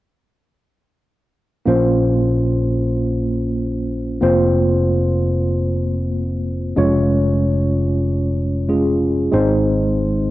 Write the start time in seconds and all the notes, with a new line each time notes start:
1.66 A#1 A#3 C#4 F4 C5
4.21 F1 A#3 C4 F4 C5
6.76 F1 G#3 C#4 F4 C#5
8.68 G#3 C#4 F4 G#4
9.31 G#1 G#3 C4 D#4 C5